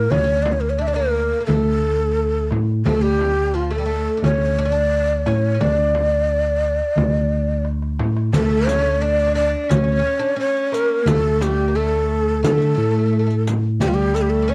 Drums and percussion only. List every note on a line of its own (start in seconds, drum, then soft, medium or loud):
0.12 darbuka dum medium
0.12 frame drum medium
0.29 darbuka ka soft
0.46 darbuka tek medium
0.46 frame drum medium
1.48 darbuka dum medium
1.48 frame drum medium
1.83 darbuka ka soft
2.51 darbuka tek medium
2.51 frame drum medium
2.85 darbuka dum medium
2.85 frame drum medium
3.02 darbuka ka soft
3.19 darbuka tek medium
3.19 frame drum medium
4.22 darbuka dum medium
4.22 frame drum medium
5.26 darbuka tek medium
5.26 frame drum medium
5.60 darbuka dum medium
5.60 frame drum medium
5.95 darbuka tek medium
5.95 frame drum medium
6.28 darbuka ka soft
6.96 darbuka dum medium
6.96 frame drum medium
7.65 darbuka tek medium
7.82 darbuka ka soft
7.99 darbuka tek medium
7.99 frame drum medium
8.17 darbuka ka medium
8.33 riq medium
8.33 frame drum medium
8.33 darbuka dum medium
8.67 riq medium
8.67 darbuka tek medium
8.67 frame drum medium
9.20 riq soft
9.70 riq medium
9.70 darbuka dum medium
9.70 frame drum medium
9.88 riq soft
10.56 riq soft
10.73 riq medium
10.73 darbuka tek medium
11.07 riq medium
11.07 frame drum loud
11.07 darbuka dum medium
11.41 riq medium
11.41 darbuka tek medium
11.41 frame drum medium
12.44 riq medium
12.44 darbuka dum medium
12.44 frame drum medium
12.61 riq soft
12.61 darbuka ka soft
13.30 riq soft
13.47 riq medium
13.47 frame drum medium
13.80 riq medium
13.80 darbuka dum medium
13.80 frame drum medium
14.14 riq soft
14.14 darbuka tek medium